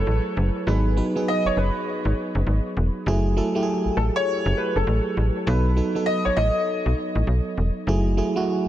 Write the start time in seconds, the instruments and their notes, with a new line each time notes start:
Already playing: fm electric piano F#3 A3 E4 G#4, grand piano A4
0.07 fm bass A1
0.37 fm bass F#1
0.67 fm bass G#1, fm electric piano F#3 B3 D#4 G#4, grand piano B4
0.97 fm electric piano F#3 B3 D#4 B4
1.16 fm electric piano F#3 B3 D#4 G#4
1.28 grand piano D#5
1.45 fm bass F#1, grand piano C#5
1.57 fm bass F#1, grand piano B4
2.05 fm bass G#1
2.35 fm bass F#1
2.47 fm bass G#1
2.77 fm bass E1
3.06 fm bass F#1, fm electric piano F#3 A3 E4 G#4
3.37 fm electric piano F#3 A3 E4 A4
3.55 fm electric piano F#3 A3 E4 G4
3.63 fm electric piano G#4
3.85 fm bass A1
3.97 fm bass A1, grand piano A4
4.16 grand piano C#5
4.46 fm bass F#1
4.57 grand piano B4
4.76 fm bass F#1, grand piano A4
4.87 fm bass A1
5.17 fm bass A1
5.46 fm bass B1, fm electric piano F#3 B3 D#4 A4, grand piano B4
5.76 fm electric piano F#3 B3 D#4 A4
5.95 fm electric piano F#3 B3 D#4 A4
6.06 grand piano D#5
6.25 fm bass A1, grand piano C#5
6.37 fm bass A1, grand piano D#5
6.86 fm bass B1
7.15 fm bass A1
7.27 fm bass B1
7.58 fm bass E1
7.87 fm bass F#1, fm electric piano F#3 A3 E4 G#4
8.17 fm electric piano F#3 A3 E4 G#4
8.36 fm electric piano F#3 A3 E4 F#4